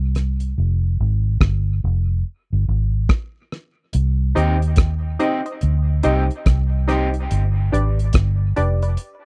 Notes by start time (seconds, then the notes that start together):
Already playing: C2
0.15 cross-stick, closed hi-hat
0.40 closed hi-hat
0.58 F1
1.00 G#1
1.41 G1, kick, cross-stick
1.84 F1
2.53 G1
2.68 G#1
3.09 kick, cross-stick
3.52 cross-stick
3.93 C2, closed hi-hat
4.35 D#2 C4 D#4 G4 C5 D#5, closed hi-hat
4.62 closed hi-hat
4.76 kick, cross-stick, closed hi-hat
5.19 C4 D#4 G4 C5 D#5, closed hi-hat
5.46 C5 D#5, closed hi-hat
5.61 D2, closed hi-hat
6.03 C2 C4 D#4 G4 C5 D#5, closed hi-hat
6.31 closed hi-hat
6.46 C2, kick, cross-stick, closed hi-hat
6.88 C4 D#4 G4 C5 D#5, cross-stick, closed hi-hat
7.14 closed hi-hat
7.31 G1, closed hi-hat
7.72 G#1 D4 G4 B4 D5, closed hi-hat
7.99 closed hi-hat
8.13 G1, kick, cross-stick, closed hi-hat
8.56 F1 D4 G4 B4 D5, closed hi-hat
8.82 B4 D5, closed hi-hat
8.97 closed hi-hat